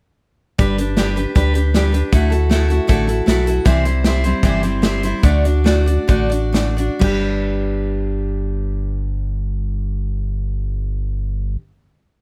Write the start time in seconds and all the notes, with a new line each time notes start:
0.58 G1 G3 D4 G4 B4, kick, closed hi-hat
0.78 D4 G4 B4, closed hi-hat
0.97 G3 D4 G4 B4, snare, closed hi-hat
1.16 D4 G4 B4, closed hi-hat
1.35 D2 G3 D4 G4 B4, kick, closed hi-hat
1.54 D4 G4 B4, closed hi-hat
1.74 G3 D4 G4 B4, snare, closed hi-hat
1.92 D4 G4 B4, closed hi-hat
2.12 D2 D3 A3 E4 F#4 A4, kick, closed hi-hat
2.30 E4 F#4 A4, closed hi-hat
2.49 A3 E4 F#4 A4, snare, closed hi-hat
2.68 E4 F#4 A4, closed hi-hat
2.87 A1 D3 A3 E4 F#4 A4, kick, closed hi-hat
3.07 E4 F#4 A4, closed hi-hat
3.26 B1 A3 E4 F#4 A4, snare, closed hi-hat
3.46 E4 F#4 A4, closed hi-hat
3.65 C2 C3 E3 G3 C4 E4 C5, kick, closed hi-hat
3.85 G3 C4 E4 C5, closed hi-hat
4.04 G3 C4 E4 C5, snare, closed hi-hat
4.24 G3 C4 E4 C5, closed hi-hat
4.43 G1 C3 E3 G3 C4 E4 C5, kick, closed hi-hat
4.63 G3 C4 E4 C5, closed hi-hat
4.82 G3 C4 E4 C5, snare, closed hi-hat
5.03 G3 C4 E4 C5, closed hi-hat
5.23 D2 D3 A3 D4 F#4 D5, kick, closed hi-hat
5.44 D4 F#4 D5, closed hi-hat
5.64 A3 D4 F#4 D5, snare, closed hi-hat
5.86 D4 F#4 D5, closed hi-hat
6.08 A1 D3 A3 D4 F#4 D5, kick, closed hi-hat
6.30 D4 F#4 D5, closed hi-hat
6.53 A3 D4 F#4 D5, snare, closed hi-hat
6.77 D4 F#4 D5, closed hi-hat
6.99 G1 G3 D4, kick, crash
7.04 G4 B4